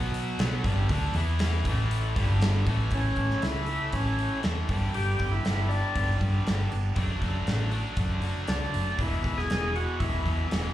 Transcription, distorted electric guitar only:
Already playing: B2 F#3 B3
0.39 B2 F#3 B3
0.66 G2 D3 G3
0.91 D3 A3 D4
1.16 E3 B3 E4
1.67 A2 E3 A3
2.17 G2 D3 G3
2.68 A2 E3 A3
2.93 A2 E3 A3
3.70 A2 E3 A3
4.71 G2 D3 G3
5.47 G2 D3
5.51 G3
6.96 D3 A3 D4
7.72 D3 A3 D4
8.99 E2 B2 E3
9.77 E2 B2 E3

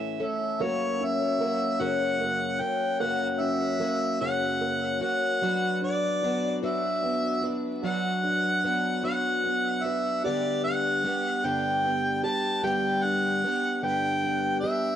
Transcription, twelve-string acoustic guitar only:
Already playing: A2 E3 A3 C#4 A4
0.20 A3 C#4 A4
0.59 F#2 C#3 F#3 A#3 C#4 F#4
1.39 F#3 A#3 C#4 F#4
1.80 F#2 C#3 F#3 A#3 C#4 F#4
2.60 F#3 A#3 C#4
3.01 F#2 C#3 F#3 A#3 C#4 F#4
3.79 F#3 A#3 C#4 F#4
4.21 F#2 C#3 F#3 A#3 C#4 F#4
5.01 F#3 A#3 C#4 F#4
5.42 F#3 B3 D4 F#4
6.23 F#3 B3 D4 F#4
6.63 F#3 B3 D4 F#4
7.42 B3 D4 F#4
7.83 F#3 B3 D4 F#4
8.64 F#3 B3 D4 F#4
9.03 F#3 B3 D4 F#4
9.84 B3 D4 F#4
10.25 G2 D3 G3 B3 D4 G4
11.04 G3 B3 D4 G4
11.44 G2 D3 G3 B3 D4 G4
12.24 G3 B3 D4 G4
12.63 G2 D3 G3 B3 D4 G4
13.43 G3 B3 D4 G4
13.83 G2 D3 G3 B3 D4 G4
14.64 G3 B3 D4 G4

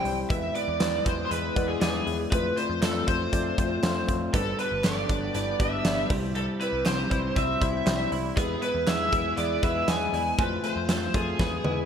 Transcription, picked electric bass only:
0.05 C2
0.30 E2
0.68 E2
0.81 E2
1.06 E2
1.31 E2
1.56 E2
1.81 E2
2.07 E2
2.32 F2
2.69 F2
2.82 F2
3.08 F2
3.33 F2
3.58 F2
3.83 F2
4.08 F2
4.34 G1
4.72 G1
4.85 G1
5.09 G1
5.35 G1
5.60 G1
5.85 G1
6.10 C2
6.73 C2
6.85 C2
7.11 C2
7.36 C2
7.61 C2
7.86 C2
8.12 C2
8.37 E2
8.75 E2
8.88 E2
9.12 E2
9.38 E2
9.63 E2
9.88 E2
10.13 E2
10.39 F2
10.76 F2
10.89 F2
11.14 F2
11.39 E2
11.65 E2

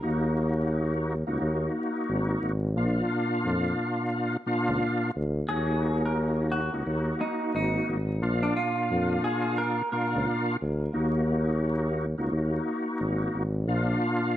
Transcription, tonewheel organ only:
0.02 A#3 D#4 F#4
1.27 A#3 D#4 F#4
1.40 A#3 D#4 F#4
2.76 A#2 A#3 D4 F4 F5
4.46 A#2 A#3 D4 F4 F5
5.48 A#3 D#4 F#4
6.72 A#3 D#4 F#4
6.85 A#3 D#4 F#4
8.22 A#2 A#3 D4 F4 F5
9.92 A#2 A#3 D4 F4 F5
10.93 A#3 D#4 F#4
12.18 A#3 D#4 F#4
12.31 A#3 D#4 F#4
13.67 A#2 A#3 D4 F4 F5

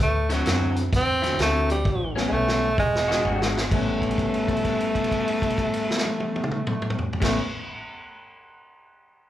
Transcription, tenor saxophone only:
0.03 A3
0.33 F#3
0.96 C4
1.42 A3
1.72 G3
2.28 G#3
2.33 A3
2.79 G#3
3.73 A3
7.23 A3

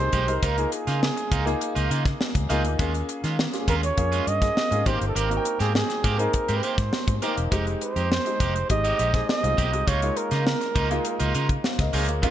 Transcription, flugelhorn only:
Already playing: C5
0.44 A#4
0.73 G#4
3.69 A#4
3.85 C#5
4.28 D#5
4.87 C5
5.08 A4
5.16 A#4
5.61 G#4
5.75 G#4
6.19 A#4
6.56 B4
6.63 C5
7.83 C5
8.71 D#5
9.30 D#5
9.88 C#5
10.18 A#4

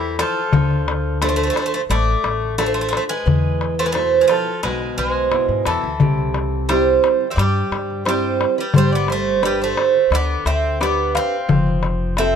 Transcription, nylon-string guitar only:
Already playing: E4 A4 C5
0.54 D3
1.22 D4 F4 A4
1.89 A3
2.58 D4 F4 A4
3.26 E3
3.95 B2 E4
4.63 B2
5.32 B2 E4
6.01 C3
6.69 C4 E4 G4
7.38 G3
8.06 C4 E4 G4
8.75 G3
9.42 D4 G4 D5
10.12 D3
10.80 D4 G4 B4
11.49 F3
12.18 C4 F4 A4

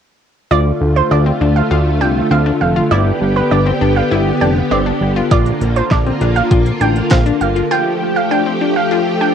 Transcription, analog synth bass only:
0.51 D2
0.81 D2
1.11 D2
1.41 D2
1.71 D2
2.01 C2
2.31 D2
2.61 F1
2.91 G1
3.21 G1
3.51 G1
3.81 G1
4.11 G1
4.41 F1
4.71 G1
5.01 G1
5.31 A#1
5.61 A#1
5.91 A#1
6.21 A#1
6.51 A#1
6.81 A1
7.11 A#1
7.41 G1

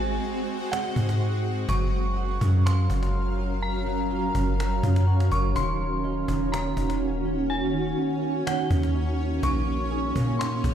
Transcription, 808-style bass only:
Already playing: G#1
0.96 G#2
1.69 F#1
2.41 F#2
2.90 F#1
4.35 F#1
4.83 F#2
5.32 F#1
5.56 D#1
6.28 D#1
6.77 D#1
8.70 D#2
9.43 A#1
10.16 A#2
10.64 A#1

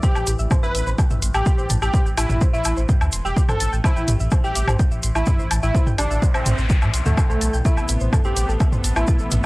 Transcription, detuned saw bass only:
0.15 A1
0.27 A1
0.39 A1
0.63 A1
0.75 A1
0.87 A1
1.11 A1
1.22 A1
1.34 A1
1.58 A1
1.70 A1
1.82 A1
2.06 A1
2.17 A1
2.30 A1
2.53 A1
2.65 A1
2.77 A1
3.01 D2
3.13 E1
3.25 E1
3.49 A1
3.60 A1
3.73 A1
3.96 A1
4.08 A1
4.20 A1
4.44 A1
4.56 A1
4.68 A1
4.92 A1
5.03 A1
5.15 A1
5.39 A1
5.51 A1
5.63 A1
5.87 A1
5.98 A1
6.11 A1
6.34 A1
6.46 A1
6.58 A1
6.82 A2
6.94 B1
7.06 D2
7.30 B1
7.41 B1
7.53 B1
7.77 A1
7.89 A1
8.01 A1
8.25 A1
8.36 A1
8.49 A1
8.72 A1
8.84 A1
8.96 A1
9.20 A1
9.32 A1

